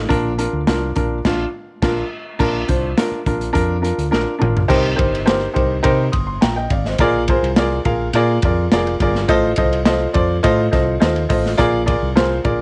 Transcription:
0.09 fingered electric bass A#1, upright piano D4 F4 A#4, kick, closed hi-hat
0.38 upright piano D4 F4 A#4, closed hi-hat
0.53 fingered electric bass D2
0.67 fingered electric bass C2, upright piano D4 F4 A#4, snare, closed hi-hat
0.95 fingered electric bass A#1, upright piano D4 F4 A#4, kick, closed hi-hat
1.25 fingered electric bass A#1, upright piano D4 F4, kick, snare, crash
1.82 fingered electric bass A#1, upright piano D4 F4 A#4, kick, snare, crash
2.39 fingered electric bass A#1, upright piano D4 F4 A#4, kick, crash
2.68 fingered electric bass C2, upright piano D4 F4 C5, kick, closed hi-hat
2.97 upright piano D4 F4 A#4, snare, closed hi-hat
3.11 muted fingered electric bass stroke
3.26 fingered electric bass A#1, upright piano D4 F4 A#4, kick, closed hi-hat
3.41 closed hi-hat
3.53 fingered electric bass F2, upright piano D4 F4 A#4, kick, closed hi-hat
3.82 upright piano D4 F4 A#4, closed hi-hat
3.98 fingered electric bass D2, closed hi-hat
4.11 fingered electric bass A#1, upright piano D4 F4 A#4, snare
4.39 fingered electric bass G#1, upright piano D4 F4 A#4, mid tom
4.55 fingered electric bass A#1, floor tom
4.68 fingered electric bass C2, upright piano D#4 G4 A#4 C5, kick, crash
4.96 fingered electric bass G1, upright piano D#4 G4 A#4 C5, kick, ride
5.15 ride
5.25 upright piano D#4 G4 A#4 C5, snare, ride
5.54 fingered electric bass C2, upright piano D#4 G4 A#4 C5, kick, ride
5.83 fingered electric bass C3, upright piano D#4 G4 A#4 C5, kick, ride
6.12 fingered electric bass G1, upright piano C6 D#6, kick, ride
6.27 upright piano C6
6.41 fingered electric bass A#1, upright piano G5 A#5, snare, ride
6.56 upright piano D#5 G5
6.70 fingered electric bass G#1, upright piano D5 F5, kick, ride
6.85 upright piano C5 D#5, snare
6.98 fingered electric bass A#1, upright piano F4 G#4 A#4 D5, kick, ride
7.28 upright piano F4 G#4 A#4 C5, kick, ride
7.42 fingered electric bass C2, ride
7.56 upright piano F4 G#4 A#4 D5, snare, ride
7.85 fingered electric bass A#1, upright piano F4 G#4 A#4 F5, kick, ride
8.13 fingered electric bass A#2, upright piano F4 G#4 A#4 D5, ride
8.42 fingered electric bass F2, upright piano F4 G#4 A#4 D5, kick, ride
8.71 fingered electric bass F1, upright piano F4 G#4 A#4 D5, snare, ride
8.87 ride
9.00 fingered electric bass G1, upright piano F4 G#4 A#4 D5, kick, ride
9.15 snare
9.28 fingered electric bass A1, upright piano F4 A4 C5 D#5, kick, ride
9.56 fingered electric bass C2, upright piano F4 A4 C5 D#5, kick, ride
9.73 ride
9.85 upright piano F4 A4 C5 D#5, snare, ride
10.13 fingered electric bass F2, upright piano F4 A4 C5 D5, kick, ride
10.43 fingered electric bass A2, upright piano F4 A4 C5 D#5, kick, ride
10.71 fingered electric bass C2, upright piano F4 A4 C5 D#5, kick, snare, ride
11.00 fingered electric bass D#2, upright piano F4 A4 C5 D#5, snare, ride
11.16 ride
11.29 fingered electric bass A1, upright piano F4 A4 C5 D#5, kick, open hi-hat, ride
11.46 snare
11.57 fingered electric bass A#1, upright piano F4 G#4 A#4 D5, kick, hi-hat pedal, ride
11.86 upright piano F4 G#4 A#4 D5, kick, ride
12.02 fingered electric bass C2
12.15 upright piano F4 G#4 A#4 C5, snare, ride
12.44 fingered electric bass A#1, upright piano F4 G#4 A#4 D5, kick, ride

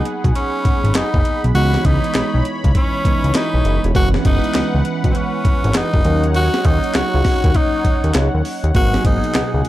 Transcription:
Already playing: tine electric piano F#3 A#3 B3 D#4, analog synth pad G#4 F#5 B5
0.05 closed hi-hat
0.24 analog synth bass B1, kick, closed hi-hat
0.35 tenor saxophone C#4, closed hi-hat
0.65 analog synth bass G#1, kick, closed hi-hat
0.84 analog synth bass G#1, closed hi-hat
0.95 analog synth bass F#1, tenor saxophone D#4, snare, clap, closed hi-hat
1.14 analog synth bass F#1, kick
1.25 closed hi-hat
1.44 analog synth bass B1, closed hi-hat
1.54 analog synth bass C#2, tine electric piano E3 G#3 B3 D#4, analog synth pad E3 C#5, tenor saxophone F#4, closed hi-hat
1.74 snare
1.85 analog synth bass C#2, tenor saxophone D#4, kick, closed hi-hat
2.04 closed hi-hat
2.15 analog synth bass B1, snare, clap, closed hi-hat
2.34 analog synth bass B1
2.45 closed hi-hat
2.64 analog synth bass C#2, kick, closed hi-hat
2.75 tenor saxophone C#4, kick, closed hi-hat
3.05 analog synth bass C#2, tine electric piano E3 G#3 B3 D#4, kick, closed hi-hat
3.24 analog synth bass C#2, closed hi-hat
3.35 tenor saxophone D#4, snare, clap, closed hi-hat
3.54 analog synth bass B1
3.65 analog synth bass F#1, closed hi-hat
3.84 analog synth bass E1, closed hi-hat
3.94 analog synth bass F#1, tine electric piano E3 G#3 B3 C#4, tenor saxophone F#4, analog synth pad B4 F#5, kick, closed hi-hat
4.14 snare
4.25 analog synth bass F#1, tenor saxophone D#4, kick, closed hi-hat
4.44 closed hi-hat
4.54 analog synth bass C#2, snare, clap, closed hi-hat
4.74 analog synth bass C#2
4.85 closed hi-hat
5.04 analog synth bass B1, kick, closed hi-hat
5.11 tenor saxophone C4, closed hi-hat
5.17 tenor saxophone C#4
5.45 analog synth bass G#1, kick, closed hi-hat
5.64 analog synth bass G#1, closed hi-hat
5.74 analog synth bass F#1, tenor saxophone D#4, snare, clap, closed hi-hat
5.94 analog synth bass F#1, kick
6.05 analog synth bass D#2, tine electric piano F#3 A#3 C#4 D#4, analog synth pad D#4 C#5 F#5, closed hi-hat
6.24 closed hi-hat
6.34 tenor saxophone F#4, closed hi-hat
6.54 snare
6.64 analog synth bass D#2, tenor saxophone D#4, kick, closed hi-hat
6.84 closed hi-hat
6.94 analog synth bass C#2, tenor saxophone F#4, snare, clap, closed hi-hat
7.14 analog synth bass C#2
7.25 kick, snare, open hi-hat
7.44 analog synth bass D#2, kick, closed hi-hat
7.54 tenor saxophone D#4, kick, closed hi-hat
7.85 analog synth bass D#2, kick, closed hi-hat
8.04 analog synth bass D#2, closed hi-hat
8.14 analog synth bass C#2, snare, clap, closed hi-hat
8.34 analog synth bass D#2
8.45 open hi-hat
8.64 analog synth bass D#2, closed hi-hat
8.74 analog synth bass G#1, analog synth pad B2 G#4, tine electric piano F#3 A#3 B3 D#4, tenor saxophone F#4, kick, closed hi-hat
8.94 snare
9.05 analog synth bass G#1, tenor saxophone D#4, kick, closed hi-hat
9.24 closed hi-hat
9.34 analog synth bass C#2, snare, clap, closed hi-hat
9.54 analog synth bass C#2
9.65 closed hi-hat

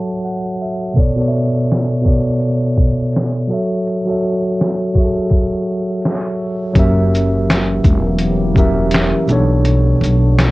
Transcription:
Already playing: tine electric piano F#3 F#4 A4 C#5 E5 F#5 A5
0.25 tine electric piano F#5
0.62 tine electric piano E5
0.94 tine electric piano B2 B3 A4, kick, closed hi-hat
0.98 tine electric piano C#5 D5
1.15 tine electric piano B2 B3 A4
1.20 tine electric piano C#5 D5
1.28 tine electric piano E5
1.37 closed hi-hat
1.72 finger snap, snare, closed hi-hat
2.02 tine electric piano B2 B3 A4
2.06 tine electric piano C#5 D5, kick, closed hi-hat
2.40 closed hi-hat
2.78 kick
3.13 snare, closed hi-hat
3.17 finger snap
3.48 tine electric piano F#3 F#4 A4
3.52 tine electric piano C#5 E5
3.87 closed hi-hat
4.05 tine electric piano F#3 F#4 A4
4.10 tine electric piano C#5 E5
4.61 finger snap, snare, closed hi-hat
4.94 tine electric piano F#3 F#4 G#4, kick, closed hi-hat
4.98 tine electric piano C#5 E5
5.03 tine electric piano A4
5.30 kick, closed hi-hat
6.02 snare, closed hi-hat
6.06 finger snap
6.74 upright bass F#1, ambient pad E3 F#3 A#3 G4, tine electric piano F#3 C#4 G4, kick, closed hi-hat
6.78 tine electric piano A#4 E5
7.15 closed hi-hat, shaker
7.50 finger snap, snare, closed hi-hat
7.84 upright bass E1, kick, closed hi-hat, shaker
8.18 closed hi-hat
8.54 tine electric piano F#3 C#4 G4, kick, shaker
8.58 tine electric piano A#4 E5
8.91 snare, closed hi-hat
8.95 finger snap
9.27 upright bass B1, tine electric piano B2 B3 D4, ambient pad B2 A3 B3 D4, shaker
9.31 tine electric piano A4 C#5
9.65 closed hi-hat
10.01 upright bass B1, closed hi-hat, shaker
10.39 finger snap, snare, closed hi-hat

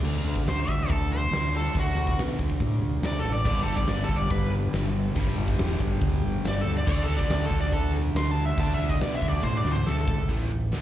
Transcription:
Already playing: overdriven electric guitar D3 A3 D4
0.03 fingered electric bass D2, crash
0.24 fingered electric bass D2
0.36 kick, snare
0.45 fingered electric bass D2, lead electric guitar C5, snare, open hi-hat
0.68 fingered electric bass D2, lead electric guitar E5, kick
0.90 fingered electric bass D2, lead electric guitar A4, kick, open hi-hat
1.13 lead electric guitar C5
1.31 fingered electric bass D2, snare, open hi-hat
1.52 overdriven electric guitar D3 A3 D4
1.57 lead electric guitar A4
1.75 fingered electric bass D2, kick, open hi-hat
1.80 lead electric guitar F#4
1.95 fingered electric bass D2
2.07 kick, snare
2.17 fingered electric bass B1, snare, open hi-hat
2.39 fingered electric bass D2, kick
2.50 kick
2.60 fingered electric bass A2, kick, open hi-hat
2.82 fingered electric bass D2
3.02 fingered electric bass D2, lead electric guitar D5, snare, open hi-hat
3.19 lead electric guitar A4
3.23 fingered electric bass A1
3.32 lead electric guitar D5
3.45 fingered electric bass G1, overdriven electric guitar G2 D3 G3, lead electric guitar D5, kick, crash
3.63 fingered electric bass G1, lead electric guitar A4
3.76 lead electric guitar D5, kick, snare
3.87 fingered electric bass G1, lead electric guitar D5, snare, open hi-hat
4.04 lead electric guitar A4
4.09 fingered electric bass G1, kick
4.16 lead electric guitar D5
4.30 fingered electric bass G1, lead electric guitar B4, kick, open hi-hat
4.72 fingered electric bass G1, snare, open hi-hat
5.15 fingered electric bass G1, overdriven electric guitar G2 D3 G3, kick, open hi-hat
5.37 fingered electric bass G1
5.48 kick, snare
5.58 fingered electric bass E1, snare, open hi-hat
5.80 fingered electric bass G1, kick
6.01 fingered electric bass D2, kick, open hi-hat
6.24 fingered electric bass G1
6.44 fingered electric bass G1, lead electric guitar D5, snare, open hi-hat
6.61 lead electric guitar A4
6.67 fingered electric bass D2
6.77 lead electric guitar D5
6.86 fingered electric bass D2, overdriven electric guitar D3 A3 D4, lead electric guitar D5, kick, crash
7.04 lead electric guitar A4
7.09 fingered electric bass D2
7.17 lead electric guitar D5, kick, snare
7.30 fingered electric bass D2, lead electric guitar D5, snare, open hi-hat
7.46 lead electric guitar A4
7.51 fingered electric bass D2, kick
7.60 lead electric guitar D5
7.72 fingered electric bass D2, lead electric guitar A4, kick, open hi-hat
8.15 fingered electric bass D2, lead electric guitar C6, snare, open hi-hat
8.31 lead electric guitar A5
8.45 lead electric guitar E5
8.57 fingered electric bass D2, overdriven electric guitar D3 A3 D4, lead electric guitar A5, kick, open hi-hat
8.74 lead electric guitar E5
8.79 fingered electric bass D2
8.89 lead electric guitar D#5, kick
9.00 fingered electric bass B1, lead electric guitar D5, snare, open hi-hat
9.15 lead electric guitar E5
9.22 fingered electric bass D2, kick
9.29 lead electric guitar D5, kick
9.43 fingered electric bass A2, lead electric guitar C5, kick, high tom
9.57 lead electric guitar D5
9.64 fingered electric bass D2, snare
9.72 lead electric guitar C5, mid tom
9.87 fingered electric bass D2, lead electric guitar A4, snare
10.01 lead electric guitar A4
10.07 fingered electric bass G#1, kick
10.18 floor tom
10.29 fingered electric bass A1, overdriven electric guitar A2 E3 A3, kick, closed hi-hat
10.50 fingered electric bass A1, overdriven electric guitar A2 E3, closed hi-hat
10.71 fingered electric bass D2, overdriven electric guitar D3 A3 D4, snare, closed hi-hat

